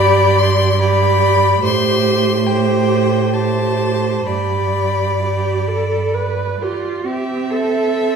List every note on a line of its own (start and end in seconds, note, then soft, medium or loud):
0.00 1.59 G2 medium
0.00 0.80 G4 medium
0.00 0.77 D5 loud
0.00 0.40 B5 loud
0.38 0.81 C6 loud
0.79 1.62 G4 medium
0.79 1.61 D5 medium
0.79 1.63 B5 loud
1.62 4.23 A2 medium
1.62 2.44 G4 medium
1.62 2.43 C5 medium
1.62 2.48 C6 loud
2.46 3.33 G4 medium
2.46 3.34 C5 medium
2.46 3.35 G5 loud
3.34 4.25 G4 medium
3.34 4.28 C5 medium
3.34 4.25 A5 loud
4.25 6.56 G2 medium
4.25 5.11 G4 medium
4.25 6.85 D5 medium
4.25 6.55 B5 medium
5.22 5.69 G4 medium
5.68 6.16 A4 medium
6.14 6.64 B4 medium
6.60 7.08 F4 medium
6.60 7.06 G4 medium
7.06 8.16 C4 medium
7.06 7.51 G4 medium
7.06 8.16 E5 medium
7.50 8.16 A4 medium